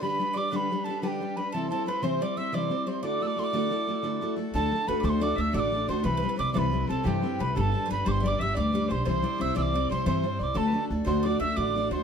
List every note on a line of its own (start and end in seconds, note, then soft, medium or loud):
0.00 0.20 D3 medium
0.00 0.18 G3 medium
0.00 0.19 D4 medium
0.00 0.19 G4 medium
0.00 0.33 B4 medium
0.00 0.40 B4 medium
0.00 0.20 B4 medium
0.00 0.39 B5 loud
0.19 0.34 G3 medium
0.19 0.36 D4 medium
0.19 0.36 G4 medium
0.19 0.36 B4 medium
0.33 0.51 G3 medium
0.33 0.52 D4 medium
0.33 0.52 G4 medium
0.33 0.50 D5 medium
0.33 0.52 D6 loud
0.38 0.53 B4 medium
0.38 0.53 D5 medium
0.51 0.70 D3 medium
0.51 0.70 G3 medium
0.51 0.71 D4 medium
0.51 0.71 G4 loud
0.51 1.04 B4 medium
0.51 0.84 B4 medium
0.51 0.71 B4 loud
0.51 0.57 D6 loud
0.56 0.86 B5 loud
0.71 0.87 G3 medium
0.71 0.87 D4 medium
0.71 0.88 G4 medium
0.71 0.88 B4 medium
0.84 1.02 G3 medium
0.84 1.01 A4 medium
0.84 1.02 A5 medium
0.88 1.02 D4 medium
0.88 1.02 G4 medium
0.88 1.02 B4 medium
1.02 1.21 D3 medium
1.02 1.19 G3 medium
1.02 1.20 D4 medium
1.02 1.39 G4 medium
1.02 1.21 G4 medium
1.02 1.38 G4 medium
1.02 1.21 B4 medium
1.02 1.08 A5 medium
1.07 1.38 G5 medium
1.21 1.35 G3 medium
1.21 1.36 D4 medium
1.21 1.37 G4 medium
1.21 1.38 B4 medium
1.36 1.53 G3 medium
1.36 1.53 D4 medium
1.36 1.54 G4 medium
1.36 1.52 B4 medium
1.36 1.53 B4 medium
1.36 1.55 B4 medium
1.36 1.51 B5 medium
1.52 1.71 C3 medium
1.52 1.71 E3 medium
1.52 1.69 G3 medium
1.52 1.70 C4 medium
1.52 1.70 E4 medium
1.52 1.69 A4 medium
1.52 1.70 A4 medium
1.52 1.71 C5 medium
1.52 1.69 A5 medium
1.70 1.85 G3 medium
1.70 1.86 C4 medium
1.70 1.86 E4 medium
1.70 1.88 A4 medium
1.70 1.86 A4 medium
1.70 1.87 C5 medium
1.70 1.86 A5 medium
1.86 2.02 G3 medium
1.86 2.02 C4 medium
1.86 2.02 E4 medium
1.86 2.05 B4 medium
1.86 2.03 B4 medium
1.86 2.02 C5 medium
1.86 2.04 B5 medium
2.02 2.20 C3 medium
2.02 2.21 E3 medium
2.02 2.19 G3 medium
2.02 2.20 C4 medium
2.02 2.20 E4 medium
2.02 2.21 C5 loud
2.02 2.22 C5 medium
2.02 2.21 C5 medium
2.02 2.21 C6 loud
2.21 2.36 G3 medium
2.21 2.36 C4 medium
2.21 2.37 E4 medium
2.21 2.38 C5 medium
2.21 2.37 D5 medium
2.21 2.39 D6 medium
2.37 2.52 G3 medium
2.37 2.52 C4 medium
2.37 2.53 E4 medium
2.37 2.53 C5 medium
2.37 2.52 E5 medium
2.37 2.56 E5 medium
2.37 2.56 E6 loud
2.52 2.71 C3 medium
2.52 2.71 E3 medium
2.52 2.68 G3 medium
2.52 2.69 C4 medium
2.52 2.69 E4 medium
2.52 2.70 C5 medium
2.52 2.85 D5 medium
2.52 3.03 D5 medium
2.52 2.90 D6 medium
2.69 2.85 G3 medium
2.69 2.86 C4 medium
2.69 2.86 E4 medium
2.69 2.87 C5 medium
2.86 3.03 G3 medium
2.86 3.02 C4 medium
2.86 3.01 E4 medium
2.86 3.02 C5 medium
2.86 3.03 C5 medium
2.86 3.04 C6 medium
3.03 3.21 D3 medium
3.03 3.20 A3 medium
3.03 3.21 E4 medium
3.03 3.21 F#4 medium
3.03 3.21 A4 medium
3.03 4.33 D5 medium
3.03 4.34 D5 medium
3.03 3.23 D6 loud
3.21 3.35 A3 medium
3.21 3.36 E4 medium
3.21 3.37 F#4 medium
3.21 3.37 A4 medium
3.21 3.28 E6 loud
3.27 3.40 D6 loud
3.36 3.52 A3 medium
3.36 3.52 E4 medium
3.36 3.53 F#4 medium
3.36 3.53 A4 medium
3.36 3.45 C6 loud
3.44 4.35 D6 loud
3.53 3.71 D3 medium
3.53 3.69 A3 medium
3.53 3.70 E4 medium
3.53 3.71 F#4 medium
3.53 3.71 A4 medium
3.70 3.86 A3 medium
3.70 3.87 E4 medium
3.70 3.87 F#4 medium
3.70 3.88 A4 medium
3.87 4.03 A3 medium
3.87 4.02 E4 medium
3.87 4.03 F#4 medium
3.87 4.03 A4 medium
4.03 4.21 D3 medium
4.03 4.20 A3 medium
4.03 4.21 E4 medium
4.03 4.21 F#4 medium
4.03 4.22 A4 medium
4.21 4.35 A3 medium
4.21 4.35 E4 medium
4.21 4.36 F#4 medium
4.21 4.37 A4 medium
4.36 4.53 A3 medium
4.36 4.53 E4 medium
4.36 4.54 F#4 medium
4.36 4.54 A4 medium
4.54 4.70 D2 loud
4.54 4.72 D3 medium
4.54 4.71 A3 medium
4.54 4.71 D4 medium
4.54 4.72 F#4 medium
4.54 4.85 A4 medium
4.54 4.86 A4 medium
4.54 4.72 A4 medium
4.54 4.89 A5 loud
4.72 4.86 A3 medium
4.72 4.87 D4 medium
4.72 4.87 F#4 medium
4.72 4.88 A4 medium
4.87 5.03 D2 medium
4.87 5.02 A3 medium
4.87 5.03 D4 medium
4.87 5.03 F#4 medium
4.87 5.04 A4 medium
4.87 5.05 B4 medium
4.87 5.00 B4 medium
4.87 5.06 B5 loud
5.00 5.35 D2 loud
5.00 5.21 D3 medium
5.00 5.19 A3 medium
5.00 5.20 D4 medium
5.00 5.23 C5 medium
5.00 5.04 D5 medium
5.04 5.20 F#4 medium
5.04 5.21 A4 medium
5.04 5.21 C5 medium
5.04 5.10 D6 loud
5.09 5.25 C6 loud
5.20 5.35 A3 medium
5.20 5.35 D4 medium
5.20 5.36 F#4 medium
5.20 5.37 A4 medium
5.20 5.37 D5 medium
5.20 5.42 D6 loud
5.35 5.52 D2 medium
5.35 5.52 A3 medium
5.35 5.53 D4 medium
5.35 5.53 F#4 medium
5.35 5.53 A4 medium
5.35 5.55 E5 medium
5.35 5.53 E5 medium
5.40 5.55 E6 loud
5.53 5.85 A1 medium
5.53 5.71 D3 medium
5.53 5.71 A3 medium
5.53 5.71 D4 medium
5.53 5.72 F#4 medium
5.53 5.72 A4 medium
5.53 5.90 D5 medium
5.53 5.86 D5 medium
5.53 5.60 E6 loud
5.59 5.87 D6 loud
5.72 5.87 A3 medium
5.72 5.88 D4 medium
5.72 5.89 F#4 medium
5.72 5.89 A4 medium
5.88 6.03 D2 medium
5.88 6.03 A3 medium
5.88 6.04 D4 medium
5.88 6.04 F#4 medium
5.88 6.04 A4 medium
5.88 6.03 C5 medium
5.88 6.07 C6 loud
6.03 6.21 C2 loud
6.03 6.22 C3 medium
6.03 6.22 E3 medium
6.03 6.21 G3 medium
6.03 6.22 C4 medium
6.03 6.22 E4 medium
6.03 6.15 B4 medium
6.03 6.51 B4 medium
6.03 6.22 B4 medium
6.03 6.38 B5 loud
6.17 6.28 B4 medium
6.22 6.35 G3 medium
6.22 6.36 C4 medium
6.22 6.37 E4 medium
6.22 6.38 B4 medium
6.29 6.38 B4 medium
6.36 6.53 C2 loud
6.36 6.53 G3 medium
6.36 6.53 C4 medium
6.36 6.54 E4 medium
6.36 6.54 B4 medium
6.36 6.54 D5 medium
6.36 6.53 D6 loud
6.53 6.86 C2 loud
6.53 6.72 C3 medium
6.53 6.72 E3 medium
6.53 6.70 G3 loud
6.53 6.71 C4 medium
6.53 6.72 E4 loud
6.53 6.90 B4 medium
6.53 6.73 B4 medium
6.53 6.87 B4 medium
6.53 6.59 D6 loud
6.58 6.86 B5 loud
6.72 6.86 G3 medium
6.72 6.88 C4 medium
6.72 6.88 E4 medium
6.72 6.89 B4 medium
6.87 7.04 C2 medium
6.87 7.04 G3 medium
6.87 7.03 C4 medium
6.87 7.04 E4 medium
6.87 7.05 A4 medium
6.87 7.06 A4 medium
6.87 7.05 B4 medium
6.87 7.04 A5 medium
7.04 7.36 G2 loud
7.04 7.22 C3 medium
7.04 7.22 E3 medium
7.04 7.21 G3 medium
7.04 7.22 C4 medium
7.04 7.22 E4 medium
7.04 7.41 G4 medium
7.04 7.38 G4 medium
7.04 7.22 B4 medium
7.04 7.42 G5 medium
7.22 7.38 G3 medium
7.22 7.39 C4 medium
7.22 7.39 E4 medium
7.22 7.39 B4 medium
7.39 7.54 C2 loud
7.39 7.54 G3 medium
7.39 7.55 C4 medium
7.39 7.56 E4 medium
7.39 7.54 B4 medium
7.39 7.55 B4 medium
7.39 7.56 B5 medium
7.54 7.72 G1 loud
7.54 7.71 G3 medium
7.54 7.71 D4 medium
7.54 7.73 G4 medium
7.54 7.86 A4 medium
7.54 7.85 A4 medium
7.54 7.73 B4 medium
7.54 7.62 B5 loud
7.61 7.90 A5 loud
7.72 7.87 G3 medium
7.72 7.88 D4 medium
7.72 7.89 G4 medium
7.72 7.90 B4 medium
7.86 8.04 G3 medium
7.86 8.05 D4 medium
7.86 8.06 B4 medium
7.86 7.89 C5 medium
7.90 8.05 G1 medium
7.90 8.05 G4 medium
7.90 8.05 B4 medium
7.90 8.06 B4 medium
7.90 8.09 B5 loud
8.04 8.37 G1 loud
8.04 8.21 G3 medium
8.04 8.22 D4 medium
8.04 8.23 G4 medium
8.04 8.24 B4 medium
8.04 8.22 C5 medium
8.04 8.18 C5 medium
8.04 8.12 D6 loud
8.11 8.29 C6 loud
8.20 8.39 G3 medium
8.20 8.39 D4 medium
8.20 8.40 D5 medium
8.20 8.24 E5 medium
8.25 8.40 G4 medium
8.25 8.40 B4 medium
8.25 8.40 D5 medium
8.25 8.44 D6 medium
8.39 8.54 G1 medium
8.39 8.54 G3 medium
8.39 8.56 D4 medium
8.39 8.55 G4 medium
8.39 8.56 B4 medium
8.39 8.55 E5 medium
8.39 8.57 E6 loud
8.54 8.87 D2 loud
8.54 8.71 G3 medium
8.54 8.72 D4 medium
8.54 8.73 G4 medium
8.54 8.73 B4 medium
8.54 8.89 D5 medium
8.54 8.73 D5 medium
8.58 8.93 D6 loud
8.72 8.88 G3 medium
8.72 8.88 D4 medium
8.72 8.89 G4 medium
8.72 8.90 B4 medium
8.72 8.89 D5 medium
8.88 9.05 B1 medium
8.88 9.05 G3 medium
8.88 9.05 D4 medium
8.88 9.06 G4 medium
8.88 9.06 B4 medium
8.88 9.05 C5 medium
8.88 9.04 C5 medium
8.88 9.07 C6 medium
9.05 9.23 C2 medium
9.05 9.23 C3 medium
9.05 9.23 E3 medium
9.05 9.21 G3 medium
9.05 9.22 C4 medium
9.05 9.22 E4 medium
9.05 9.56 C5 medium
9.05 9.23 C5 medium
9.09 9.43 C6 loud
9.22 9.37 G3 medium
9.22 9.38 C4 medium
9.22 9.38 E4 medium
9.22 9.39 C5 medium
9.22 9.39 D5 medium
9.38 9.55 C2 medium
9.38 9.54 G3 medium
9.38 9.54 C4 medium
9.38 9.55 E4 medium
9.38 9.54 C5 medium
9.38 9.55 E5 medium
9.38 9.57 E6 loud
9.55 9.87 C2 medium
9.55 9.73 C3 medium
9.55 9.73 E3 medium
9.55 9.72 G3 medium
9.55 9.73 C4 loud
9.55 9.73 E4 loud
9.55 9.74 C5 medium
9.55 9.93 D5 medium
9.55 9.73 D5 medium
9.55 9.63 E6 loud
9.62 9.88 D6 loud
9.74 9.88 G3 medium
9.74 9.89 C4 medium
9.74 9.90 E4 medium
9.74 9.90 C5 medium
9.74 9.90 D5 medium
9.89 10.05 C2 medium
9.89 10.05 G3 medium
9.89 10.05 C4 medium
9.89 10.06 E4 medium
9.89 10.05 C5 medium
9.89 10.06 C5 medium
9.89 10.05 C5 medium
9.89 10.05 C6 loud
10.05 10.37 G2 medium
10.05 10.24 C3 medium
10.05 10.24 E3 medium
10.05 10.22 G3 medium
10.05 10.23 C4 medium
10.05 10.24 E4 medium
10.05 10.40 C5 medium
10.05 10.53 C5 medium
10.05 10.24 C5 medium
10.05 10.45 C6 medium
10.23 10.38 G3 medium
10.23 10.38 C4 medium
10.23 10.40 E4 medium
10.23 10.40 C5 medium
10.39 10.55 C2 medium
10.39 10.54 G3 medium
10.39 10.55 C4 medium
10.39 10.55 E4 medium
10.39 10.55 C5 medium
10.39 10.58 D5 medium
10.43 10.59 D6 medium
10.54 10.72 D2 loud
10.54 10.73 D3 medium
10.54 10.71 A3 medium
10.54 10.71 D4 medium
10.54 10.73 F#4 medium
10.54 10.88 A4 medium
10.54 10.68 A4 medium
10.54 10.73 D5 medium
10.54 10.85 A5 loud
10.67 10.81 B4 medium
10.72 10.89 A3 medium
10.72 10.90 D4 medium
10.72 10.90 F#4 medium
10.72 10.90 D5 medium
10.80 10.91 A4 medium
10.90 11.05 D2 loud
10.90 11.05 A3 medium
10.90 11.05 D4 medium
10.90 11.05 F#4 medium
10.90 11.05 D5 medium
11.05 11.37 D2 loud
11.05 11.24 D3 medium
11.05 11.23 A3 medium
11.05 11.23 D4 medium
11.05 11.24 F#4 medium
11.05 11.22 C5 medium
11.05 11.27 C5 medium
11.05 11.25 D5 medium
11.05 11.27 C6 loud
11.23 11.39 A3 medium
11.23 11.40 D4 medium
11.23 11.40 F#4 medium
11.23 11.39 D5 medium
11.23 11.41 D5 medium
11.23 11.40 D6 medium
11.40 11.55 D2 medium
11.40 11.55 A3 medium
11.40 11.56 D4 medium
11.40 11.56 F#4 medium
11.40 11.56 D5 medium
11.40 11.57 E5 medium
11.40 11.59 E5 medium
11.40 11.58 E6 loud
11.56 11.88 A1 loud
11.56 11.74 D3 medium
11.56 11.73 A3 medium
11.56 11.75 D4 medium
11.56 11.75 F#4 medium
11.56 11.89 D5 medium
11.56 11.93 D5 medium
11.56 11.75 D5 medium
11.56 11.91 D6 medium
11.74 11.90 A3 medium
11.74 11.91 D4 medium
11.74 11.91 F#4 medium
11.74 11.92 D5 medium
11.91 12.03 D2 loud
11.91 12.03 A3 soft
11.91 12.03 D4 medium
11.91 12.03 F#4 medium
11.91 12.03 C5 medium
11.91 12.03 D5 medium
11.91 12.03 C6 medium